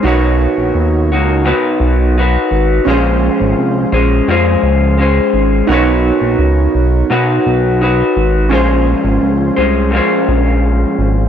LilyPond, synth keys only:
\new Staff \with { instrumentName = "Synth keys" } { \time 4/4 \key ces \lydian \tempo 4 = 85 <dis' fis' ais' des''>1 | <des' f' aes' c''>1 | <dis' fis' ais' des''>1 | <des' f' aes' c''>1 | }